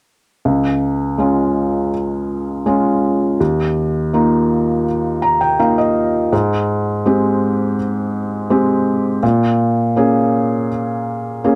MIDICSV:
0, 0, Header, 1, 2, 480
1, 0, Start_track
1, 0, Tempo, 733496
1, 297, Time_signature, 4, 2, 24, 8
1, 7560, End_track
2, 0, Start_track
2, 0, Title_t, "Felt piano"
2, 0, Program_c, 0, 0
2, 295, Note_on_c, 0, 37, 41
2, 403, Control_c, 0, 64, 127
2, 774, Note_on_c, 0, 56, 31
2, 781, Note_on_c, 0, 61, 27
2, 783, Note_on_c, 0, 65, 35
2, 1246, Note_off_c, 0, 56, 0
2, 1249, Note_off_c, 0, 61, 0
2, 1250, Note_off_c, 0, 65, 0
2, 1740, Note_on_c, 0, 56, 31
2, 1742, Note_on_c, 0, 61, 31
2, 1746, Note_on_c, 0, 65, 35
2, 2198, Note_off_c, 0, 37, 0
2, 2209, Note_off_c, 0, 56, 0
2, 2210, Note_off_c, 0, 61, 0
2, 2212, Note_off_c, 0, 65, 0
2, 2227, Note_on_c, 0, 39, 44
2, 2233, Control_c, 0, 64, 0
2, 2342, Control_c, 0, 64, 127
2, 2706, Note_on_c, 0, 58, 34
2, 2708, Note_on_c, 0, 65, 37
2, 2709, Note_on_c, 0, 63, 31
2, 3171, Note_off_c, 0, 58, 0
2, 3172, Note_off_c, 0, 65, 0
2, 3173, Note_off_c, 0, 63, 0
2, 3417, Note_on_c, 0, 82, 47
2, 3532, Note_off_c, 0, 82, 0
2, 3539, Note_on_c, 0, 79, 45
2, 3652, Note_off_c, 0, 79, 0
2, 3659, Note_on_c, 0, 58, 35
2, 3660, Note_on_c, 0, 63, 32
2, 3661, Note_on_c, 0, 77, 48
2, 3665, Note_on_c, 0, 65, 38
2, 3773, Note_off_c, 0, 77, 0
2, 3783, Note_on_c, 0, 75, 44
2, 4114, Note_off_c, 0, 39, 0
2, 4114, Note_off_c, 0, 75, 0
2, 4123, Note_off_c, 0, 58, 0
2, 4123, Note_off_c, 0, 63, 0
2, 4126, Note_off_c, 0, 65, 0
2, 4138, Note_on_c, 0, 44, 49
2, 4149, Control_c, 0, 64, 0
2, 4261, Control_c, 0, 64, 127
2, 4618, Note_on_c, 0, 56, 37
2, 4621, Note_on_c, 0, 60, 32
2, 4621, Note_on_c, 0, 67, 41
2, 5077, Note_off_c, 0, 56, 0
2, 5078, Note_off_c, 0, 60, 0
2, 5078, Note_off_c, 0, 67, 0
2, 5564, Note_on_c, 0, 56, 36
2, 5564, Note_on_c, 0, 60, 34
2, 5568, Note_on_c, 0, 67, 41
2, 6016, Note_off_c, 0, 44, 0
2, 6028, Note_off_c, 0, 56, 0
2, 6028, Note_off_c, 0, 60, 0
2, 6030, Note_off_c, 0, 67, 0
2, 6039, Note_on_c, 0, 46, 52
2, 6051, Control_c, 0, 64, 0
2, 6160, Control_c, 0, 64, 127
2, 6520, Note_on_c, 0, 58, 38
2, 6521, Note_on_c, 0, 61, 34
2, 6526, Note_on_c, 0, 68, 43
2, 6988, Note_off_c, 0, 58, 0
2, 6989, Note_off_c, 0, 61, 0
2, 6991, Note_off_c, 0, 68, 0
2, 7488, Note_on_c, 0, 58, 37
2, 7490, Note_on_c, 0, 68, 41
2, 7494, Note_on_c, 0, 61, 34
2, 7560, Note_off_c, 0, 46, 0
2, 7560, Note_off_c, 0, 58, 0
2, 7560, Note_off_c, 0, 61, 0
2, 7560, Note_off_c, 0, 68, 0
2, 7560, End_track
0, 0, End_of_file